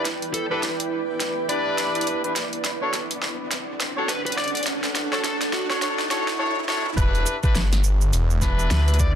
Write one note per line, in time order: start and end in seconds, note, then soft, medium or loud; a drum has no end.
0.00 3.96 E4 medium
0.00 4.23 B4 medium
0.00 2.36 D5 medium
0.00 2.36 G5 medium
0.00 riser medium
0.05 snare medium
0.05 closed hi-hat medium
0.22 closed hi-hat soft
0.33 0.45 A4 medium
0.33 closed hi-hat medium
0.51 0.64 D4 loud
0.51 0.64 E4 medium
0.51 0.64 G4 medium
0.51 0.59 A4 medium
0.51 0.64 B4 loud
0.63 snare medium
0.63 closed hi-hat medium
0.80 closed hi-hat medium
1.20 snare medium
1.20 closed hi-hat medium
1.49 2.20 D4 loud
1.49 2.20 E4 medium
1.49 2.20 G4 medium
1.49 2.20 B4 loud
1.49 2.07 D5 medium
1.49 closed hi-hat medium
1.78 snare medium
1.78 closed hi-hat medium
1.95 closed hi-hat soft
2.01 closed hi-hat medium
2.07 closed hi-hat medium
2.24 2.34 D4 medium
2.24 2.34 E4 medium
2.24 2.34 G4 medium
2.24 2.35 B4 medium
2.24 closed hi-hat soft
2.36 6.40 D4 loud
2.36 snare medium
2.36 closed hi-hat medium
2.53 closed hi-hat soft
2.64 snare medium
2.64 closed hi-hat medium
2.81 2.95 D4 medium
2.81 2.95 F#4 medium
2.81 6.40 A4 medium
2.81 2.95 A4 medium
2.81 2.95 C#5 loud
2.81 6.40 F#5 medium
2.94 snare medium
2.94 closed hi-hat medium
3.11 closed hi-hat medium
3.22 snare medium
3.51 6.40 C#5 medium
3.51 snare medium
3.51 closed hi-hat medium
3.80 snare medium
3.80 closed hi-hat medium
3.97 4.10 D4 medium
3.97 4.10 F#4 medium
3.97 4.10 A4 medium
3.97 4.10 C#5 loud
4.09 4.20 B4 medium
4.09 snare medium
4.09 closed hi-hat medium
4.26 4.33 B4 medium
4.26 closed hi-hat medium
4.32 closed hi-hat medium
4.37 4.49 D5 medium
4.37 snare medium
4.37 closed hi-hat soft
4.44 closed hi-hat soft
4.48 closed hi-hat soft
4.55 4.62 D5 medium
4.55 closed hi-hat soft
4.57 closed hi-hat medium
4.63 snare medium
4.63 closed hi-hat medium
4.66 closed hi-hat medium
4.84 snare medium
4.84 closed hi-hat soft
4.95 snare loud
4.95 closed hi-hat medium
5.12 5.22 D4 medium
5.12 5.22 F#4 medium
5.12 5.22 A4 medium
5.12 5.20 A4 medium
5.12 5.22 C#5 loud
5.12 snare medium
5.24 5.35 A4 medium
5.24 snare loud
5.24 closed hi-hat medium
5.41 snare medium
5.41 closed hi-hat medium
5.53 5.64 F#4 medium
5.53 snare loud
5.70 5.80 D4 loud
5.70 5.80 F#4 medium
5.70 5.78 F#4 medium
5.70 5.80 A4 medium
5.70 5.80 C#5 loud
5.70 snare medium
5.82 6.00 D4 loud
5.82 6.00 F#4 medium
5.82 6.00 A4 loud
5.82 6.00 C#5 loud
5.82 snare loud
5.82 closed hi-hat medium
5.82 swell medium
5.99 snare medium
6.11 6.29 D4 loud
6.11 6.29 F#4 loud
6.11 6.29 A4 loud
6.11 6.29 C#5 loud
6.11 snare loud
6.11 closed hi-hat medium
6.28 snare loud
6.39 6.58 D4 loud
6.39 6.58 F#4 medium
6.39 6.58 A4 loud
6.39 6.58 C#5 loud
6.39 high tom medium
6.57 high tom medium
6.68 6.86 D4 loud
6.68 6.86 F#4 medium
6.68 6.86 A4 medium
6.68 6.86 C#5 loud
6.68 snare medium
6.86 mid tom medium
6.97 7.24 E1 medium
6.97 7.36 D4 loud
6.97 7.36 E4 loud
6.97 7.36 G4 medium
6.97 7.37 B4 loud
6.97 kick loud
6.97 closed hi-hat medium
6.97 shaker soft
7.15 closed hi-hat soft
7.15 shaker soft
7.26 closed hi-hat medium
7.26 shaker medium
7.31 9.15 B4 medium
7.43 7.56 D4 loud
7.43 7.56 E4 medium
7.43 7.56 G4 medium
7.43 7.56 B4 loud
7.43 kick loud
7.43 shaker soft
7.55 8.11 G1 loud
7.55 snare loud
7.55 closed hi-hat medium
7.55 shaker soft
7.73 snare medium
7.73 closed hi-hat medium
7.73 shaker soft
7.84 shaker medium
8.01 shaker soft
8.13 8.69 E1 medium
8.13 closed hi-hat medium
8.13 shaker soft
8.31 shaker soft
8.42 9.13 D4 loud
8.42 9.13 E4 medium
8.42 9.13 G4 medium
8.42 9.12 B4 loud
8.42 kick medium
8.42 snare medium
8.42 closed hi-hat medium
8.42 shaker medium
8.59 shaker soft
8.70 9.15 D2 loud
8.70 8.81 B4 medium
8.70 snare loud
8.70 closed hi-hat medium
8.70 shaker soft
8.88 8.95 B4 medium
8.88 closed hi-hat medium
8.88 shaker soft
8.94 closed hi-hat medium
9.00 9.11 D5 medium
9.00 kick loud
9.00 closed hi-hat medium
9.00 shaker medium